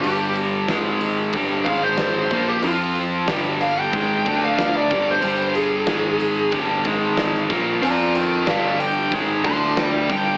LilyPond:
<<
  \new Staff \with { instrumentName = "Lead electric guitar" } { \time 4/4 \key g \minor \tempo 4 = 92 g'8 r2 f''16 c''4 g'16 | f'8 r4 f''16 g''4 f''8 d''8 c''16~ | c''8 aes'4. r2 | <d'' bes''>8 <bes' g''>8 <d'' f''>8 g''8 r8 <a'' c'''>8 <d'' g''>8 g''8 | }
  \new Staff \with { instrumentName = "Overdriven electric guitar" } { \clef bass \time 4/4 \key g \minor <g, d g>4 <aes, ees aes>4 <g, d g>8 <aes, ees aes>4 <bes, f bes>8 | <f c' f'>4 <g, d g>4 <aes, ees aes>8 <d a d'>4 <g, d g>8 | <g, d g>4 <aes, ees aes>4 <g, d g>8 <aes, ees aes>4 <bes, f bes>8 | <f c' f'>4 <g, d g>4 <aes, ees aes>8 <d a d'>4 <g, d g>8 | }
  \new Staff \with { instrumentName = "Picked electric bass" } { \clef bass \time 4/4 \key g \minor g,,4 aes,,4 g,,8 aes,,4 bes,,8 | f,4 g,,4 aes,,8 d,4 g,,8 | g,,4 aes,,4 g,,8 aes,,4 bes,,8 | f,4 g,,4 aes,,8 d,4 g,,8 | }
  \new DrumStaff \with { instrumentName = "Drums" } \drummode { \time 4/4 hho8 hho8 <hho sn>8 hho8 <hho bd>8 <hho bd>8 <hho sn>8 <hho bd>8 | hho8 hho8 <hho sn>8 hho8 <hho bd>8 <hho bd>8 <hho sn>8 <hho bd>8 | hho8 hho8 <hho sn>8 hho8 <hho bd>8 <hho bd>8 <hho sn>16 sn16 <hho bd>8 | hho8 hho8 <hho sn>8 hho8 <hho bd>8 <hho bd>8 <hho sn>8 <hho bd>8 | }
>>